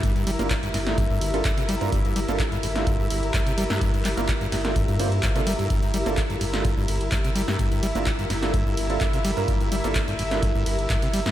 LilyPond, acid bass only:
\new Staff \with { instrumentName = "Acid bass" } { \clef bass \time 4/4 \key g \dorian \tempo 4 = 127 g,16 g,16 g16 bes16 r16 g,16 g,16 r16 g,16 g,16 g,,16 r16 g,16 c16 g16 g,16 | g,16 g,16 g16 bes16 r16 g,16 g,16 r16 g,16 g,16 g,,16 r16 g,16 c16 g16 g,16 | g,16 g,16 g16 bes16 r16 g,16 g,16 r16 g,16 g,16 g,,16 r16 g,16 c16 g16 g,16 | g,16 g,16 g16 bes16 r16 g,16 g,16 r16 g,16 g,16 g,,16 r16 g,16 c16 g16 g,16 |
g,16 g,16 g16 bes16 r16 g,16 g,16 r16 g,16 g,16 g,,16 r16 g,16 c16 g16 g,16 | r16 g,16 g16 bes16 r16 g,16 g,16 r16 g,16 g,16 g,,16 r16 g,16 c16 g16 g,16 | }